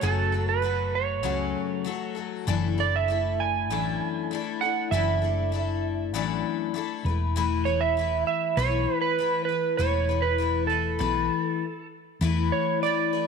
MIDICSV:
0, 0, Header, 1, 4, 480
1, 0, Start_track
1, 0, Tempo, 609756
1, 20, Time_signature, 4, 2, 24, 8
1, 10446, End_track
2, 0, Start_track
2, 0, Title_t, "Electric slide guitar"
2, 0, Program_c, 0, 29
2, 26, Note_on_c, 0, 69, 76
2, 381, Note_off_c, 0, 69, 0
2, 384, Note_on_c, 0, 71, 76
2, 750, Note_on_c, 0, 73, 63
2, 757, Note_off_c, 0, 71, 0
2, 1683, Note_off_c, 0, 73, 0
2, 2205, Note_on_c, 0, 74, 73
2, 2324, Note_off_c, 0, 74, 0
2, 2328, Note_on_c, 0, 76, 73
2, 2677, Note_on_c, 0, 80, 75
2, 2693, Note_off_c, 0, 76, 0
2, 3629, Note_on_c, 0, 78, 74
2, 3667, Note_off_c, 0, 80, 0
2, 3863, Note_off_c, 0, 78, 0
2, 3867, Note_on_c, 0, 76, 74
2, 4799, Note_off_c, 0, 76, 0
2, 6024, Note_on_c, 0, 73, 92
2, 6139, Note_off_c, 0, 73, 0
2, 6145, Note_on_c, 0, 76, 100
2, 6501, Note_off_c, 0, 76, 0
2, 6511, Note_on_c, 0, 76, 78
2, 6748, Note_on_c, 0, 73, 96
2, 6757, Note_off_c, 0, 76, 0
2, 7093, Note_off_c, 0, 73, 0
2, 7096, Note_on_c, 0, 71, 82
2, 7430, Note_off_c, 0, 71, 0
2, 7439, Note_on_c, 0, 71, 77
2, 7674, Note_off_c, 0, 71, 0
2, 7694, Note_on_c, 0, 73, 86
2, 8045, Note_on_c, 0, 71, 77
2, 8070, Note_off_c, 0, 73, 0
2, 8397, Note_off_c, 0, 71, 0
2, 8400, Note_on_c, 0, 69, 55
2, 9339, Note_off_c, 0, 69, 0
2, 9858, Note_on_c, 0, 73, 73
2, 10083, Note_off_c, 0, 73, 0
2, 10098, Note_on_c, 0, 74, 80
2, 10446, Note_off_c, 0, 74, 0
2, 10446, End_track
3, 0, Start_track
3, 0, Title_t, "Twelve-string acoustic guitar"
3, 0, Program_c, 1, 25
3, 10, Note_on_c, 1, 42, 74
3, 18, Note_on_c, 1, 49, 65
3, 19, Note_on_c, 1, 54, 74
3, 25, Note_on_c, 1, 57, 86
3, 27, Note_on_c, 1, 66, 70
3, 28, Note_on_c, 1, 69, 75
3, 244, Note_off_c, 1, 69, 0
3, 254, Note_on_c, 1, 69, 50
3, 257, Note_off_c, 1, 42, 0
3, 258, Note_off_c, 1, 66, 0
3, 261, Note_off_c, 1, 49, 0
3, 262, Note_off_c, 1, 54, 0
3, 265, Note_off_c, 1, 57, 0
3, 267, Note_on_c, 1, 66, 49
3, 274, Note_on_c, 1, 57, 40
3, 278, Note_on_c, 1, 54, 42
3, 480, Note_off_c, 1, 54, 0
3, 489, Note_off_c, 1, 57, 0
3, 489, Note_on_c, 1, 54, 57
3, 498, Note_off_c, 1, 66, 0
3, 499, Note_on_c, 1, 57, 62
3, 500, Note_off_c, 1, 69, 0
3, 507, Note_on_c, 1, 66, 56
3, 515, Note_on_c, 1, 69, 56
3, 967, Note_on_c, 1, 42, 73
3, 970, Note_on_c, 1, 49, 74
3, 973, Note_off_c, 1, 54, 0
3, 976, Note_on_c, 1, 54, 72
3, 977, Note_off_c, 1, 57, 0
3, 980, Note_on_c, 1, 57, 72
3, 983, Note_off_c, 1, 66, 0
3, 983, Note_off_c, 1, 69, 0
3, 986, Note_on_c, 1, 66, 74
3, 986, Note_on_c, 1, 69, 76
3, 1449, Note_off_c, 1, 54, 0
3, 1452, Note_on_c, 1, 54, 64
3, 1459, Note_off_c, 1, 57, 0
3, 1461, Note_off_c, 1, 42, 0
3, 1462, Note_off_c, 1, 49, 0
3, 1462, Note_on_c, 1, 57, 67
3, 1466, Note_off_c, 1, 66, 0
3, 1469, Note_on_c, 1, 66, 64
3, 1473, Note_off_c, 1, 69, 0
3, 1476, Note_on_c, 1, 69, 73
3, 1682, Note_off_c, 1, 69, 0
3, 1691, Note_on_c, 1, 69, 40
3, 1694, Note_off_c, 1, 66, 0
3, 1702, Note_off_c, 1, 57, 0
3, 1703, Note_off_c, 1, 54, 0
3, 1703, Note_on_c, 1, 66, 44
3, 1711, Note_on_c, 1, 57, 42
3, 1719, Note_on_c, 1, 54, 36
3, 1941, Note_off_c, 1, 57, 0
3, 1943, Note_off_c, 1, 69, 0
3, 1943, Note_on_c, 1, 42, 77
3, 1947, Note_off_c, 1, 54, 0
3, 1949, Note_off_c, 1, 66, 0
3, 1949, Note_on_c, 1, 52, 84
3, 1950, Note_on_c, 1, 57, 81
3, 1952, Note_on_c, 1, 62, 93
3, 1959, Note_on_c, 1, 64, 90
3, 1963, Note_on_c, 1, 69, 90
3, 2176, Note_off_c, 1, 69, 0
3, 2179, Note_off_c, 1, 64, 0
3, 2186, Note_on_c, 1, 69, 48
3, 2188, Note_on_c, 1, 64, 49
3, 2190, Note_off_c, 1, 42, 0
3, 2192, Note_off_c, 1, 52, 0
3, 2192, Note_off_c, 1, 62, 0
3, 2193, Note_off_c, 1, 57, 0
3, 2201, Note_on_c, 1, 62, 42
3, 2207, Note_on_c, 1, 57, 40
3, 2416, Note_off_c, 1, 57, 0
3, 2425, Note_on_c, 1, 57, 59
3, 2427, Note_off_c, 1, 62, 0
3, 2431, Note_off_c, 1, 69, 0
3, 2432, Note_off_c, 1, 64, 0
3, 2437, Note_on_c, 1, 62, 59
3, 2444, Note_on_c, 1, 64, 59
3, 2454, Note_on_c, 1, 69, 51
3, 2915, Note_on_c, 1, 42, 70
3, 2917, Note_off_c, 1, 62, 0
3, 2917, Note_on_c, 1, 52, 78
3, 2922, Note_off_c, 1, 57, 0
3, 2925, Note_on_c, 1, 57, 76
3, 2926, Note_off_c, 1, 64, 0
3, 2929, Note_off_c, 1, 69, 0
3, 2929, Note_on_c, 1, 64, 75
3, 2930, Note_on_c, 1, 62, 73
3, 2932, Note_on_c, 1, 69, 73
3, 3389, Note_off_c, 1, 57, 0
3, 3392, Note_on_c, 1, 57, 64
3, 3396, Note_off_c, 1, 62, 0
3, 3397, Note_off_c, 1, 42, 0
3, 3406, Note_off_c, 1, 64, 0
3, 3406, Note_on_c, 1, 62, 60
3, 3409, Note_on_c, 1, 64, 66
3, 3418, Note_off_c, 1, 69, 0
3, 3421, Note_on_c, 1, 69, 77
3, 3429, Note_off_c, 1, 52, 0
3, 3629, Note_off_c, 1, 69, 0
3, 3635, Note_off_c, 1, 57, 0
3, 3638, Note_on_c, 1, 69, 43
3, 3640, Note_off_c, 1, 64, 0
3, 3642, Note_off_c, 1, 62, 0
3, 3650, Note_on_c, 1, 64, 38
3, 3659, Note_on_c, 1, 62, 35
3, 3665, Note_on_c, 1, 57, 38
3, 3874, Note_on_c, 1, 42, 70
3, 3875, Note_off_c, 1, 57, 0
3, 3878, Note_off_c, 1, 62, 0
3, 3878, Note_off_c, 1, 69, 0
3, 3880, Note_on_c, 1, 52, 80
3, 3884, Note_off_c, 1, 64, 0
3, 3885, Note_on_c, 1, 57, 81
3, 3888, Note_on_c, 1, 62, 76
3, 3892, Note_on_c, 1, 64, 91
3, 3893, Note_on_c, 1, 69, 78
3, 4098, Note_off_c, 1, 69, 0
3, 4107, Note_off_c, 1, 64, 0
3, 4108, Note_on_c, 1, 69, 50
3, 4115, Note_off_c, 1, 42, 0
3, 4116, Note_on_c, 1, 64, 46
3, 4118, Note_off_c, 1, 62, 0
3, 4119, Note_off_c, 1, 52, 0
3, 4121, Note_off_c, 1, 57, 0
3, 4128, Note_on_c, 1, 62, 49
3, 4130, Note_on_c, 1, 57, 45
3, 4335, Note_off_c, 1, 57, 0
3, 4345, Note_on_c, 1, 57, 55
3, 4347, Note_off_c, 1, 62, 0
3, 4352, Note_off_c, 1, 64, 0
3, 4352, Note_off_c, 1, 69, 0
3, 4356, Note_on_c, 1, 62, 58
3, 4362, Note_on_c, 1, 64, 58
3, 4370, Note_on_c, 1, 69, 60
3, 4831, Note_on_c, 1, 42, 86
3, 4834, Note_off_c, 1, 57, 0
3, 4834, Note_off_c, 1, 62, 0
3, 4834, Note_on_c, 1, 52, 81
3, 4837, Note_on_c, 1, 57, 83
3, 4843, Note_off_c, 1, 64, 0
3, 4843, Note_on_c, 1, 62, 93
3, 4846, Note_on_c, 1, 64, 94
3, 4847, Note_off_c, 1, 69, 0
3, 4850, Note_on_c, 1, 69, 106
3, 5301, Note_off_c, 1, 57, 0
3, 5304, Note_on_c, 1, 57, 66
3, 5306, Note_off_c, 1, 62, 0
3, 5312, Note_off_c, 1, 42, 0
3, 5315, Note_on_c, 1, 62, 66
3, 5320, Note_off_c, 1, 64, 0
3, 5323, Note_on_c, 1, 64, 74
3, 5331, Note_off_c, 1, 69, 0
3, 5334, Note_on_c, 1, 69, 65
3, 5339, Note_off_c, 1, 52, 0
3, 5549, Note_off_c, 1, 57, 0
3, 5551, Note_off_c, 1, 69, 0
3, 5554, Note_off_c, 1, 62, 0
3, 5554, Note_on_c, 1, 71, 53
3, 5558, Note_off_c, 1, 64, 0
3, 5576, Note_on_c, 1, 64, 46
3, 5585, Note_on_c, 1, 57, 42
3, 5791, Note_off_c, 1, 57, 0
3, 5792, Note_on_c, 1, 52, 93
3, 5793, Note_off_c, 1, 71, 0
3, 5794, Note_off_c, 1, 64, 0
3, 5800, Note_on_c, 1, 57, 99
3, 5803, Note_on_c, 1, 64, 88
3, 5807, Note_on_c, 1, 71, 92
3, 6020, Note_off_c, 1, 71, 0
3, 6029, Note_on_c, 1, 71, 51
3, 6031, Note_off_c, 1, 52, 0
3, 6032, Note_off_c, 1, 64, 0
3, 6036, Note_off_c, 1, 57, 0
3, 6042, Note_on_c, 1, 64, 43
3, 6056, Note_on_c, 1, 57, 41
3, 6270, Note_off_c, 1, 71, 0
3, 6273, Note_on_c, 1, 52, 55
3, 6276, Note_off_c, 1, 64, 0
3, 6277, Note_off_c, 1, 57, 0
3, 6286, Note_on_c, 1, 57, 57
3, 6291, Note_on_c, 1, 64, 64
3, 6305, Note_on_c, 1, 71, 64
3, 6744, Note_off_c, 1, 52, 0
3, 6747, Note_on_c, 1, 52, 81
3, 6754, Note_off_c, 1, 57, 0
3, 6758, Note_off_c, 1, 64, 0
3, 6758, Note_on_c, 1, 57, 74
3, 6761, Note_on_c, 1, 64, 74
3, 6764, Note_off_c, 1, 71, 0
3, 6767, Note_on_c, 1, 71, 82
3, 7228, Note_off_c, 1, 52, 0
3, 7231, Note_on_c, 1, 52, 60
3, 7239, Note_off_c, 1, 57, 0
3, 7242, Note_on_c, 1, 57, 59
3, 7245, Note_off_c, 1, 64, 0
3, 7248, Note_on_c, 1, 64, 65
3, 7252, Note_off_c, 1, 71, 0
3, 7256, Note_on_c, 1, 71, 60
3, 7458, Note_off_c, 1, 71, 0
3, 7468, Note_off_c, 1, 52, 0
3, 7468, Note_on_c, 1, 71, 43
3, 7472, Note_off_c, 1, 64, 0
3, 7474, Note_off_c, 1, 57, 0
3, 7481, Note_on_c, 1, 64, 37
3, 7497, Note_on_c, 1, 57, 36
3, 7702, Note_off_c, 1, 57, 0
3, 7702, Note_off_c, 1, 64, 0
3, 7704, Note_on_c, 1, 52, 76
3, 7706, Note_off_c, 1, 71, 0
3, 7711, Note_on_c, 1, 57, 71
3, 7712, Note_on_c, 1, 64, 83
3, 7721, Note_on_c, 1, 71, 79
3, 7932, Note_off_c, 1, 71, 0
3, 7941, Note_on_c, 1, 71, 50
3, 7944, Note_off_c, 1, 52, 0
3, 7948, Note_off_c, 1, 57, 0
3, 7948, Note_off_c, 1, 64, 0
3, 7958, Note_on_c, 1, 64, 54
3, 7965, Note_on_c, 1, 57, 43
3, 8174, Note_off_c, 1, 57, 0
3, 8174, Note_on_c, 1, 52, 60
3, 8182, Note_off_c, 1, 71, 0
3, 8184, Note_on_c, 1, 57, 57
3, 8185, Note_off_c, 1, 64, 0
3, 8194, Note_on_c, 1, 64, 58
3, 8204, Note_on_c, 1, 71, 64
3, 8411, Note_off_c, 1, 71, 0
3, 8418, Note_off_c, 1, 52, 0
3, 8420, Note_on_c, 1, 71, 52
3, 8423, Note_off_c, 1, 57, 0
3, 8425, Note_off_c, 1, 64, 0
3, 8434, Note_on_c, 1, 64, 47
3, 8443, Note_on_c, 1, 57, 40
3, 8649, Note_on_c, 1, 52, 80
3, 8654, Note_off_c, 1, 57, 0
3, 8657, Note_off_c, 1, 64, 0
3, 8661, Note_off_c, 1, 71, 0
3, 8663, Note_on_c, 1, 57, 64
3, 8667, Note_on_c, 1, 64, 67
3, 8669, Note_on_c, 1, 71, 76
3, 9136, Note_off_c, 1, 52, 0
3, 9142, Note_off_c, 1, 57, 0
3, 9144, Note_off_c, 1, 64, 0
3, 9146, Note_off_c, 1, 71, 0
3, 9611, Note_on_c, 1, 52, 89
3, 9619, Note_on_c, 1, 57, 82
3, 9624, Note_on_c, 1, 64, 100
3, 9633, Note_on_c, 1, 71, 99
3, 10095, Note_off_c, 1, 52, 0
3, 10098, Note_off_c, 1, 57, 0
3, 10098, Note_on_c, 1, 52, 49
3, 10108, Note_off_c, 1, 71, 0
3, 10108, Note_on_c, 1, 57, 57
3, 10111, Note_off_c, 1, 64, 0
3, 10114, Note_on_c, 1, 64, 59
3, 10127, Note_on_c, 1, 71, 62
3, 10325, Note_off_c, 1, 71, 0
3, 10335, Note_on_c, 1, 71, 56
3, 10339, Note_off_c, 1, 64, 0
3, 10340, Note_off_c, 1, 52, 0
3, 10345, Note_off_c, 1, 57, 0
3, 10349, Note_on_c, 1, 64, 52
3, 10363, Note_on_c, 1, 57, 43
3, 10446, Note_off_c, 1, 57, 0
3, 10446, Note_off_c, 1, 64, 0
3, 10446, Note_off_c, 1, 71, 0
3, 10446, End_track
4, 0, Start_track
4, 0, Title_t, "Fingered electric bass"
4, 0, Program_c, 2, 33
4, 21, Note_on_c, 2, 30, 76
4, 979, Note_off_c, 2, 30, 0
4, 979, Note_on_c, 2, 37, 91
4, 1203, Note_off_c, 2, 37, 0
4, 1947, Note_on_c, 2, 30, 73
4, 2909, Note_off_c, 2, 30, 0
4, 2909, Note_on_c, 2, 33, 86
4, 3132, Note_off_c, 2, 33, 0
4, 3869, Note_on_c, 2, 30, 73
4, 4830, Note_off_c, 2, 30, 0
4, 4830, Note_on_c, 2, 33, 94
4, 5051, Note_off_c, 2, 33, 0
4, 5547, Note_on_c, 2, 28, 83
4, 6475, Note_off_c, 2, 28, 0
4, 6746, Note_on_c, 2, 35, 91
4, 6966, Note_off_c, 2, 35, 0
4, 7706, Note_on_c, 2, 28, 78
4, 8661, Note_off_c, 2, 28, 0
4, 8661, Note_on_c, 2, 35, 96
4, 8880, Note_off_c, 2, 35, 0
4, 9613, Note_on_c, 2, 40, 84
4, 9836, Note_off_c, 2, 40, 0
4, 10446, End_track
0, 0, End_of_file